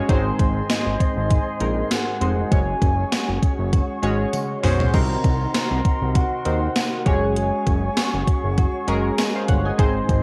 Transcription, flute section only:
0.00 4.67 G#4 medium
0.09 2.20 C5 medium
0.09 2.22 D#5 medium
0.09 2.23 C6 medium
2.52 4.92 C#5 medium
2.52 9.49 F#5 medium
2.52 4.92 C#6 medium
4.94 7.04 A#4 medium
4.94 7.04 D#5 medium
4.94 7.04 C6 medium
7.06 10.23 G#4 medium
7.06 9.55 C#5 medium
7.06 9.54 C#6 medium
9.79 10.23 C5 medium
9.79 10.23 D#5 medium
9.79 10.23 C6 medium

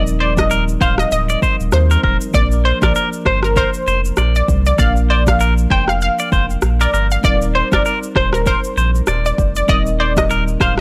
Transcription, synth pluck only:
0.20 0.35 D5 medium
0.38 0.49 D#5 medium
0.81 0.96 F5 medium
0.99 1.10 D#5 medium
1.12 1.57 D#5 medium
1.73 2.19 C5 medium
2.34 2.49 D5 loud
2.65 2.80 C5 medium
2.83 2.94 D5 medium
3.26 3.41 C5 medium
3.44 3.55 A#4 medium
3.57 4.02 C5 loud
4.36 4.47 D5 medium
4.67 4.77 D5 medium
4.79 4.94 F5 medium
5.10 5.25 D5 medium
5.28 5.39 F5 medium
5.71 5.86 G5 medium
5.89 6.00 F5 medium
6.02 6.47 F5 medium
6.81 6.92 D5 medium
7.12 7.22 F5 medium
7.25 7.39 D5 loud
7.55 7.70 C5 medium
7.73 7.84 D5 medium
8.17 8.31 C5 medium
8.34 8.45 A#4 medium
8.47 8.92 C5 loud
9.26 9.37 D5 medium
9.56 9.67 D5 medium
9.69 9.84 D#5 loud
10.00 10.15 D5 medium
10.18 10.28 D#5 medium
10.61 10.76 F5 medium

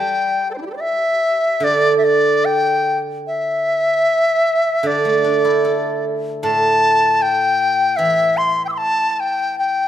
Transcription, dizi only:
0.00 0.50 G5 medium
0.51 0.53 A4 soft
0.51 0.57 C5 soft
0.58 0.61 D4 soft
0.58 0.66 E4 soft
0.66 0.70 G4 soft
0.66 0.73 A4 soft
0.74 0.76 C5 soft
0.74 0.82 D5 soft
0.80 1.65 E5 medium
1.64 1.97 D5 medium
1.98 2.06 E5 soft
2.04 2.47 D5 medium
2.45 2.99 G5 medium
3.27 4.88 E5 medium
4.87 6.05 D5 medium
6.43 7.23 A5 medium
7.22 7.98 G5 medium
7.96 8.39 E5 medium
8.37 8.65 C6 medium
8.65 8.68 G5 soft
8.65 8.71 E6 soft
8.72 8.79 C6 soft
8.72 8.74 D6 soft
8.77 9.11 A5 medium
9.11 9.21 A5 medium
9.20 9.58 G5 medium
9.59 9.88 G5 medium

